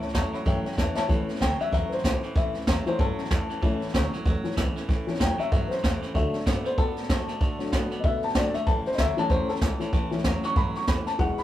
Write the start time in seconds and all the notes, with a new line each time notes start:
Already playing: A2 E3 A4
0.01 C#2 A3 C#4 E4 C#5 E5 A5, snare
0.08 snare
0.13 E2 A2 E3 F#3 A3 C#4 E4 C#5 E5 A5, kick, snare, hi-hat pedal
0.33 A2 F#3 A3 C#4 E4 C#5 E5 B5, muted upright bass stroke, snare
0.45 G2 A2 E3 F#3 A3 C#4 E4 C#5 E5 G5, kick, snare
0.65 A3 C#4 E4 C#5 E5 G5, muted upright bass stroke, snare
0.72 snare
0.76 E2 A2 E3 A3 C#4 E4 C#5 E5 A5, kick, snare, hi-hat pedal
0.95 A2 E3 A3 C#4 E4 C#5 E5 A5, muted upright bass stroke, snare
1.08 A1 A2 E3 A3 C#4 E4, kick, snare
1.27 A3 C#4 E4, snare
1.35 snare
1.40 D2 A2 E3 F#3 A3 C#4 E4 G5, kick, snare, hi-hat pedal
1.59 A2 F#3 A3 C#4 E4 E5, muted upright bass stroke, snare
1.71 E2 A2 E3 F#3 A3 C#4 E4 E5, kick, snare
1.88 C#4 E4 B4, muted upright bass stroke, snare
1.93 A3 C5
1.98 snare
2.02 C#2 A2 E3 A3 C#4 E4, kick, snare, hi-hat pedal
2.22 A2 E3 A3 C#4 E4, muted upright bass stroke, snare
2.34 A1 A2 E3 A3 C#4 E4 E5, kick, snare
2.53 C#2 A3 C#4 E4, snare
2.61 snare
2.66 E2 A2 E3 F#3 A3 C#4 E4, kick, snare, hi-hat pedal
2.85 A2 E3 F#3 A3 C#4 E4 C5, snare
2.98 G2 A2 E3 F#3 A3 C#4 E4 A4, kick, snare
3.16 A3 C#4 E4, muted upright bass stroke, snare
3.25 snare
3.29 E2 A2 E3 A3 C#4 E4, kick, snare, hi-hat pedal
3.49 A2 E3 A3 C#4 E4, muted upright bass stroke, snare
3.61 A1 A2 E3 A3 C#4 E4, kick, snare
3.80 A3 C#4 E4, muted upright bass stroke, snare
3.88 snare
3.93 D2 A2 E3 F#3 A3 C#4 E4, kick, snare, hi-hat pedal
4.12 A2 F#3 A3 C#4 E4, snare
4.25 E2 A2 E3 F#3 A3 C#4 E4, kick, snare
4.43 E3 A3 C#4 E4, muted upright bass stroke, snare
4.51 snare
4.56 C#2 A2 E3 A3 C#4 E4, kick, snare, hi-hat pedal
4.75 A2 E3 A3 C#4 E4, muted upright bass stroke, snare
4.88 A1 A2 E3 A3 C#4 E4, kick, snare
5.07 C#2 E3 A3 C#4 E4, snare
5.14 snare
5.19 E2 A2 E3 F#3 A3 C#4 E4 G5, kick, snare, hi-hat pedal
5.38 A2 F#3 A3 C#4 E4 E5, snare
5.51 G2 A2 E3 F#3 A3 C#4 E4 E5, kick, snare
5.67 E4 B4 C5, muted upright bass stroke, snare
5.72 A3 C#4
5.78 snare
5.83 E2 A2 E3 A3 C#4 E4, kick, snare, hi-hat pedal
6.02 A2 E3 A3 C#4 E4, muted upright bass stroke, snare
6.14 D2 D3 F#3 A3 D4 F#4 E5, kick, snare
6.33 A3 D4 F#4, snare
6.40 snare
6.46 G2 D3 A3 B3 D4 F#4, kick, snare, hi-hat pedal
6.65 D3 A3 B3 D4 F#4 C5, snare
6.77 A2 D3 A3 B3 D4 F#4 A4, kick, snare
6.96 A3 D4 F#4, muted upright bass stroke, snare
7.03 snare
7.09 F#2 D3 A3 D4 F#4, kick, snare, hi-hat pedal
7.28 D3 A3 D4 F#4, muted upright bass stroke, snare
7.40 D2 D3 A3 D4 F#4, kick, snare
7.59 F#2 F#3 A3 D4 F#4, snare
7.66 snare
7.71 A2 D3 A3 B3 D4 F#4, kick, snare, hi-hat pedal
7.91 D3 A3 B3 D4 F#4, muted upright bass stroke, snare
8.00 B2 D3 D#5, kick, snare
8.04 A3 B3 D4 F#4 E5
8.23 A3 D4 F#4 A5, muted upright bass stroke, snare
8.29 snare
8.34 A2 D3 F#3 A3 D4 F#4 D5, kick, snare, hi-hat pedal
8.54 D3 A3 D4 F#4 E5, muted upright bass stroke, snare
8.66 A1 A2 E3 A3 C#4 E4 A5, kick, snare
8.85 A3 C#4 E4 C5, snare
8.92 D#5, snare
8.97 D2 A2 E3 F#3 A3 C#4 E4 E5, kick, snare, hi-hat pedal
9.16 A2 E3 F#3 A3 C#4 E4 A5, snare
9.29 E2 A2 E3 F#3 A3 C#4 E4 C5, kick, snare
9.48 A3 C#4 E4 A4, muted upright bass stroke, snare
9.55 snare
9.61 C#2 A2 E3 A3 C#4 E4, kick, snare, hi-hat pedal
9.79 A2 E3 A3 C#4 E4, muted upright bass stroke, snare
9.92 A1 A2 E3 A3 C#4 E4, kick, snare
10.11 C#2 E3 A3 C#4 E4, snare
10.18 snare
10.24 E2 A2 E3 F#3 A3 C#4 E4, kick, snare, hi-hat pedal
10.43 A2 F#3 A3 C#4 E4 C#6, snare
10.56 G2 A2 E3 F#3 A3 C#4 E4 B5, kick, snare
10.75 A3 C#4 E4 C#6, muted upright bass stroke, snare
10.81 snare
10.87 E2 A2 E3 A3 C#4 E4 B5, kick, snare, hi-hat pedal
11.06 A2 E3 A3 C#4 E4 A5, muted upright bass stroke, snare
11.18 E1 E2 B2 E3 G#3 B3 E4 F#5, kick, snare
11.37 E3 G#3 B3 E4 B5, snare